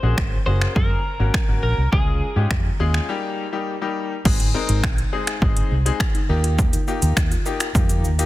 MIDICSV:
0, 0, Header, 1, 6, 480
1, 0, Start_track
1, 0, Key_signature, -4, "major"
1, 0, Tempo, 582524
1, 1586, Time_signature, 4, 2, 24, 8
1, 6804, End_track
2, 0, Start_track
2, 0, Title_t, "Clean electric guitar"
2, 0, Program_c, 0, 27
2, 0, Note_on_c, 0, 72, 113
2, 353, Note_off_c, 0, 72, 0
2, 381, Note_on_c, 0, 72, 96
2, 618, Note_off_c, 0, 72, 0
2, 622, Note_on_c, 0, 70, 98
2, 1333, Note_off_c, 0, 70, 0
2, 1343, Note_on_c, 0, 70, 90
2, 1580, Note_off_c, 0, 70, 0
2, 1583, Note_on_c, 0, 68, 82
2, 2032, Note_off_c, 0, 68, 0
2, 6804, End_track
3, 0, Start_track
3, 0, Title_t, "Grand piano"
3, 0, Program_c, 1, 0
3, 23, Note_on_c, 1, 58, 74
3, 24, Note_on_c, 1, 61, 67
3, 25, Note_on_c, 1, 66, 67
3, 27, Note_on_c, 1, 68, 82
3, 277, Note_off_c, 1, 58, 0
3, 277, Note_off_c, 1, 61, 0
3, 278, Note_off_c, 1, 66, 0
3, 279, Note_off_c, 1, 68, 0
3, 384, Note_on_c, 1, 58, 72
3, 385, Note_on_c, 1, 61, 67
3, 386, Note_on_c, 1, 66, 70
3, 388, Note_on_c, 1, 68, 84
3, 805, Note_off_c, 1, 58, 0
3, 806, Note_off_c, 1, 61, 0
3, 807, Note_off_c, 1, 66, 0
3, 807, Note_off_c, 1, 68, 0
3, 985, Note_on_c, 1, 58, 77
3, 986, Note_on_c, 1, 61, 70
3, 988, Note_on_c, 1, 66, 68
3, 989, Note_on_c, 1, 70, 83
3, 1154, Note_off_c, 1, 58, 0
3, 1155, Note_off_c, 1, 61, 0
3, 1155, Note_off_c, 1, 66, 0
3, 1156, Note_off_c, 1, 70, 0
3, 1224, Note_on_c, 1, 58, 75
3, 1224, Note_on_c, 1, 61, 64
3, 1226, Note_on_c, 1, 66, 67
3, 1228, Note_on_c, 1, 70, 82
3, 1477, Note_off_c, 1, 58, 0
3, 1477, Note_off_c, 1, 61, 0
3, 1478, Note_off_c, 1, 66, 0
3, 1479, Note_off_c, 1, 70, 0
3, 1583, Note_on_c, 1, 56, 71
3, 1585, Note_on_c, 1, 61, 69
3, 1587, Note_on_c, 1, 65, 67
3, 1588, Note_on_c, 1, 68, 79
3, 1837, Note_off_c, 1, 56, 0
3, 1838, Note_off_c, 1, 61, 0
3, 1839, Note_off_c, 1, 65, 0
3, 1839, Note_off_c, 1, 68, 0
3, 1945, Note_on_c, 1, 56, 72
3, 1946, Note_on_c, 1, 61, 68
3, 1947, Note_on_c, 1, 65, 65
3, 1949, Note_on_c, 1, 67, 79
3, 2198, Note_off_c, 1, 56, 0
3, 2198, Note_off_c, 1, 61, 0
3, 2199, Note_off_c, 1, 65, 0
3, 2200, Note_off_c, 1, 67, 0
3, 2304, Note_on_c, 1, 56, 85
3, 2306, Note_on_c, 1, 61, 78
3, 2306, Note_on_c, 1, 65, 79
3, 2308, Note_on_c, 1, 68, 98
3, 2544, Note_on_c, 1, 55, 95
3, 2545, Note_off_c, 1, 56, 0
3, 2546, Note_off_c, 1, 61, 0
3, 2546, Note_off_c, 1, 65, 0
3, 2546, Note_on_c, 1, 58, 81
3, 2547, Note_off_c, 1, 68, 0
3, 2547, Note_on_c, 1, 63, 86
3, 2548, Note_on_c, 1, 67, 100
3, 2833, Note_off_c, 1, 55, 0
3, 2834, Note_off_c, 1, 58, 0
3, 2834, Note_off_c, 1, 63, 0
3, 2835, Note_off_c, 1, 67, 0
3, 2904, Note_on_c, 1, 55, 84
3, 2906, Note_on_c, 1, 58, 82
3, 2907, Note_on_c, 1, 63, 77
3, 2908, Note_on_c, 1, 67, 94
3, 3073, Note_off_c, 1, 55, 0
3, 3074, Note_off_c, 1, 58, 0
3, 3075, Note_off_c, 1, 63, 0
3, 3075, Note_off_c, 1, 67, 0
3, 3143, Note_on_c, 1, 55, 86
3, 3144, Note_on_c, 1, 58, 79
3, 3146, Note_on_c, 1, 63, 82
3, 3147, Note_on_c, 1, 67, 94
3, 3397, Note_off_c, 1, 55, 0
3, 3397, Note_off_c, 1, 58, 0
3, 3398, Note_off_c, 1, 63, 0
3, 3399, Note_off_c, 1, 67, 0
3, 3502, Note_on_c, 1, 56, 88
3, 3503, Note_on_c, 1, 60, 79
3, 3504, Note_on_c, 1, 63, 77
3, 3506, Note_on_c, 1, 68, 99
3, 3672, Note_off_c, 1, 56, 0
3, 3673, Note_off_c, 1, 60, 0
3, 3673, Note_off_c, 1, 63, 0
3, 3674, Note_off_c, 1, 68, 0
3, 3742, Note_on_c, 1, 56, 88
3, 3745, Note_on_c, 1, 60, 86
3, 3746, Note_on_c, 1, 63, 80
3, 3747, Note_on_c, 1, 70, 99
3, 4081, Note_off_c, 1, 56, 0
3, 4082, Note_off_c, 1, 60, 0
3, 4082, Note_off_c, 1, 63, 0
3, 4083, Note_off_c, 1, 70, 0
3, 4223, Note_on_c, 1, 56, 85
3, 4224, Note_on_c, 1, 60, 79
3, 4226, Note_on_c, 1, 63, 81
3, 4227, Note_on_c, 1, 68, 96
3, 4393, Note_off_c, 1, 56, 0
3, 4393, Note_off_c, 1, 60, 0
3, 4394, Note_off_c, 1, 63, 0
3, 4394, Note_off_c, 1, 68, 0
3, 4465, Note_on_c, 1, 56, 87
3, 4466, Note_on_c, 1, 60, 81
3, 4467, Note_on_c, 1, 63, 81
3, 4468, Note_on_c, 1, 68, 97
3, 4718, Note_off_c, 1, 56, 0
3, 4718, Note_off_c, 1, 60, 0
3, 4719, Note_off_c, 1, 63, 0
3, 4719, Note_off_c, 1, 68, 0
3, 4825, Note_on_c, 1, 56, 90
3, 4826, Note_on_c, 1, 60, 83
3, 4828, Note_on_c, 1, 63, 83
3, 4829, Note_on_c, 1, 68, 100
3, 5078, Note_off_c, 1, 56, 0
3, 5078, Note_off_c, 1, 60, 0
3, 5079, Note_off_c, 1, 63, 0
3, 5080, Note_off_c, 1, 68, 0
3, 5185, Note_on_c, 1, 58, 92
3, 5187, Note_on_c, 1, 63, 88
3, 5188, Note_on_c, 1, 65, 89
3, 5189, Note_on_c, 1, 67, 101
3, 5569, Note_off_c, 1, 58, 0
3, 5570, Note_off_c, 1, 63, 0
3, 5571, Note_off_c, 1, 65, 0
3, 5571, Note_off_c, 1, 67, 0
3, 5665, Note_on_c, 1, 58, 88
3, 5666, Note_on_c, 1, 63, 85
3, 5668, Note_on_c, 1, 65, 82
3, 5669, Note_on_c, 1, 67, 103
3, 6002, Note_off_c, 1, 58, 0
3, 6002, Note_off_c, 1, 63, 0
3, 6003, Note_off_c, 1, 65, 0
3, 6004, Note_off_c, 1, 67, 0
3, 6145, Note_on_c, 1, 58, 89
3, 6147, Note_on_c, 1, 63, 81
3, 6149, Note_on_c, 1, 65, 82
3, 6149, Note_on_c, 1, 67, 102
3, 6314, Note_off_c, 1, 58, 0
3, 6315, Note_off_c, 1, 63, 0
3, 6316, Note_off_c, 1, 65, 0
3, 6316, Note_off_c, 1, 67, 0
3, 6386, Note_on_c, 1, 58, 88
3, 6387, Note_on_c, 1, 63, 78
3, 6388, Note_on_c, 1, 65, 84
3, 6390, Note_on_c, 1, 67, 95
3, 6638, Note_off_c, 1, 58, 0
3, 6639, Note_off_c, 1, 63, 0
3, 6640, Note_off_c, 1, 65, 0
3, 6640, Note_off_c, 1, 67, 0
3, 6745, Note_on_c, 1, 58, 92
3, 6747, Note_on_c, 1, 63, 85
3, 6748, Note_on_c, 1, 65, 86
3, 6750, Note_on_c, 1, 67, 101
3, 6804, Note_off_c, 1, 58, 0
3, 6804, Note_off_c, 1, 63, 0
3, 6804, Note_off_c, 1, 65, 0
3, 6804, Note_off_c, 1, 67, 0
3, 6804, End_track
4, 0, Start_track
4, 0, Title_t, "Synth pluck"
4, 0, Program_c, 2, 84
4, 3504, Note_on_c, 2, 56, 90
4, 3618, Note_off_c, 2, 56, 0
4, 3623, Note_on_c, 2, 60, 77
4, 3737, Note_off_c, 2, 60, 0
4, 3744, Note_on_c, 2, 56, 77
4, 3857, Note_off_c, 2, 56, 0
4, 3864, Note_on_c, 2, 63, 81
4, 3977, Note_off_c, 2, 63, 0
4, 3983, Note_on_c, 2, 60, 83
4, 4097, Note_off_c, 2, 60, 0
4, 4103, Note_on_c, 2, 63, 83
4, 4217, Note_off_c, 2, 63, 0
4, 4225, Note_on_c, 2, 80, 87
4, 4338, Note_off_c, 2, 80, 0
4, 4345, Note_on_c, 2, 63, 71
4, 4458, Note_off_c, 2, 63, 0
4, 4465, Note_on_c, 2, 56, 88
4, 4578, Note_off_c, 2, 56, 0
4, 4585, Note_on_c, 2, 60, 78
4, 4698, Note_off_c, 2, 60, 0
4, 4704, Note_on_c, 2, 56, 77
4, 4818, Note_off_c, 2, 56, 0
4, 5064, Note_on_c, 2, 63, 73
4, 5178, Note_off_c, 2, 63, 0
4, 5185, Note_on_c, 2, 70, 92
4, 5298, Note_off_c, 2, 70, 0
4, 5305, Note_on_c, 2, 65, 76
4, 5418, Note_off_c, 2, 65, 0
4, 5424, Note_on_c, 2, 58, 91
4, 5537, Note_off_c, 2, 58, 0
4, 5544, Note_on_c, 2, 63, 73
4, 5657, Note_off_c, 2, 63, 0
4, 5663, Note_on_c, 2, 58, 83
4, 5777, Note_off_c, 2, 58, 0
4, 5784, Note_on_c, 2, 65, 79
4, 5897, Note_off_c, 2, 65, 0
4, 5902, Note_on_c, 2, 63, 85
4, 6017, Note_off_c, 2, 63, 0
4, 6023, Note_on_c, 2, 65, 77
4, 6137, Note_off_c, 2, 65, 0
4, 6143, Note_on_c, 2, 70, 92
4, 6257, Note_off_c, 2, 70, 0
4, 6264, Note_on_c, 2, 65, 73
4, 6378, Note_off_c, 2, 65, 0
4, 6384, Note_on_c, 2, 58, 90
4, 6498, Note_off_c, 2, 58, 0
4, 6505, Note_on_c, 2, 63, 73
4, 6618, Note_off_c, 2, 63, 0
4, 6626, Note_on_c, 2, 58, 75
4, 6739, Note_off_c, 2, 58, 0
4, 6804, End_track
5, 0, Start_track
5, 0, Title_t, "Fingered electric bass"
5, 0, Program_c, 3, 33
5, 26, Note_on_c, 3, 34, 88
5, 101, Note_off_c, 3, 34, 0
5, 386, Note_on_c, 3, 30, 96
5, 535, Note_off_c, 3, 30, 0
5, 626, Note_on_c, 3, 42, 99
5, 776, Note_off_c, 3, 42, 0
5, 986, Note_on_c, 3, 32, 89
5, 1061, Note_off_c, 3, 32, 0
5, 1226, Note_on_c, 3, 32, 90
5, 1301, Note_off_c, 3, 32, 0
5, 1345, Note_on_c, 3, 34, 89
5, 1420, Note_off_c, 3, 34, 0
5, 1466, Note_on_c, 3, 36, 88
5, 1541, Note_off_c, 3, 36, 0
5, 1586, Note_on_c, 3, 37, 94
5, 1811, Note_off_c, 3, 37, 0
5, 1945, Note_on_c, 3, 44, 81
5, 2020, Note_off_c, 3, 44, 0
5, 2306, Note_on_c, 3, 39, 96
5, 2455, Note_off_c, 3, 39, 0
5, 3505, Note_on_c, 3, 32, 96
5, 3730, Note_off_c, 3, 32, 0
5, 3866, Note_on_c, 3, 32, 82
5, 3984, Note_off_c, 3, 32, 0
5, 3984, Note_on_c, 3, 34, 88
5, 4134, Note_off_c, 3, 34, 0
5, 4465, Note_on_c, 3, 32, 97
5, 4615, Note_off_c, 3, 32, 0
5, 4707, Note_on_c, 3, 36, 83
5, 4857, Note_off_c, 3, 36, 0
5, 5187, Note_on_c, 3, 39, 92
5, 5561, Note_off_c, 3, 39, 0
5, 5787, Note_on_c, 3, 39, 82
5, 5862, Note_off_c, 3, 39, 0
5, 5906, Note_on_c, 3, 39, 91
5, 6055, Note_off_c, 3, 39, 0
5, 6386, Note_on_c, 3, 41, 99
5, 6627, Note_off_c, 3, 41, 0
5, 6627, Note_on_c, 3, 39, 101
5, 6777, Note_off_c, 3, 39, 0
5, 6804, End_track
6, 0, Start_track
6, 0, Title_t, "Drums"
6, 146, Note_on_c, 9, 36, 99
6, 147, Note_on_c, 9, 26, 108
6, 228, Note_off_c, 9, 36, 0
6, 229, Note_off_c, 9, 26, 0
6, 507, Note_on_c, 9, 26, 69
6, 589, Note_off_c, 9, 26, 0
6, 626, Note_on_c, 9, 36, 109
6, 708, Note_off_c, 9, 36, 0
6, 1104, Note_on_c, 9, 36, 113
6, 1106, Note_on_c, 9, 26, 117
6, 1187, Note_off_c, 9, 36, 0
6, 1189, Note_off_c, 9, 26, 0
6, 1587, Note_on_c, 9, 36, 104
6, 1669, Note_off_c, 9, 36, 0
6, 2065, Note_on_c, 9, 26, 106
6, 2065, Note_on_c, 9, 36, 95
6, 2147, Note_off_c, 9, 26, 0
6, 2147, Note_off_c, 9, 36, 0
6, 2425, Note_on_c, 9, 26, 64
6, 2508, Note_off_c, 9, 26, 0
6, 3504, Note_on_c, 9, 49, 94
6, 3506, Note_on_c, 9, 36, 104
6, 3587, Note_off_c, 9, 49, 0
6, 3588, Note_off_c, 9, 36, 0
6, 3624, Note_on_c, 9, 42, 55
6, 3707, Note_off_c, 9, 42, 0
6, 3863, Note_on_c, 9, 42, 69
6, 3946, Note_off_c, 9, 42, 0
6, 3984, Note_on_c, 9, 36, 101
6, 3985, Note_on_c, 9, 26, 111
6, 4067, Note_off_c, 9, 26, 0
6, 4067, Note_off_c, 9, 36, 0
6, 4106, Note_on_c, 9, 42, 54
6, 4189, Note_off_c, 9, 42, 0
6, 4345, Note_on_c, 9, 42, 71
6, 4346, Note_on_c, 9, 26, 68
6, 4427, Note_off_c, 9, 42, 0
6, 4428, Note_off_c, 9, 26, 0
6, 4465, Note_on_c, 9, 36, 119
6, 4548, Note_off_c, 9, 36, 0
6, 4586, Note_on_c, 9, 42, 63
6, 4668, Note_off_c, 9, 42, 0
6, 4830, Note_on_c, 9, 42, 71
6, 4912, Note_off_c, 9, 42, 0
6, 4944, Note_on_c, 9, 36, 111
6, 4947, Note_on_c, 9, 26, 117
6, 5027, Note_off_c, 9, 36, 0
6, 5029, Note_off_c, 9, 26, 0
6, 5066, Note_on_c, 9, 42, 47
6, 5149, Note_off_c, 9, 42, 0
6, 5307, Note_on_c, 9, 42, 75
6, 5389, Note_off_c, 9, 42, 0
6, 5427, Note_on_c, 9, 36, 107
6, 5427, Note_on_c, 9, 82, 68
6, 5509, Note_off_c, 9, 36, 0
6, 5509, Note_off_c, 9, 82, 0
6, 5547, Note_on_c, 9, 42, 55
6, 5547, Note_on_c, 9, 82, 56
6, 5630, Note_off_c, 9, 42, 0
6, 5630, Note_off_c, 9, 82, 0
6, 5666, Note_on_c, 9, 82, 48
6, 5748, Note_off_c, 9, 82, 0
6, 5786, Note_on_c, 9, 42, 68
6, 5786, Note_on_c, 9, 82, 72
6, 5869, Note_off_c, 9, 42, 0
6, 5869, Note_off_c, 9, 82, 0
6, 5906, Note_on_c, 9, 36, 100
6, 5907, Note_on_c, 9, 26, 111
6, 5909, Note_on_c, 9, 82, 69
6, 5988, Note_off_c, 9, 36, 0
6, 5989, Note_off_c, 9, 26, 0
6, 5992, Note_off_c, 9, 82, 0
6, 6028, Note_on_c, 9, 42, 57
6, 6028, Note_on_c, 9, 82, 55
6, 6111, Note_off_c, 9, 42, 0
6, 6111, Note_off_c, 9, 82, 0
6, 6145, Note_on_c, 9, 82, 58
6, 6228, Note_off_c, 9, 82, 0
6, 6265, Note_on_c, 9, 42, 75
6, 6265, Note_on_c, 9, 82, 69
6, 6266, Note_on_c, 9, 26, 66
6, 6347, Note_off_c, 9, 42, 0
6, 6347, Note_off_c, 9, 82, 0
6, 6348, Note_off_c, 9, 26, 0
6, 6386, Note_on_c, 9, 36, 120
6, 6386, Note_on_c, 9, 82, 71
6, 6468, Note_off_c, 9, 36, 0
6, 6469, Note_off_c, 9, 82, 0
6, 6505, Note_on_c, 9, 42, 64
6, 6505, Note_on_c, 9, 82, 63
6, 6587, Note_off_c, 9, 42, 0
6, 6587, Note_off_c, 9, 82, 0
6, 6629, Note_on_c, 9, 82, 48
6, 6712, Note_off_c, 9, 82, 0
6, 6749, Note_on_c, 9, 42, 72
6, 6749, Note_on_c, 9, 82, 72
6, 6804, Note_off_c, 9, 42, 0
6, 6804, Note_off_c, 9, 82, 0
6, 6804, End_track
0, 0, End_of_file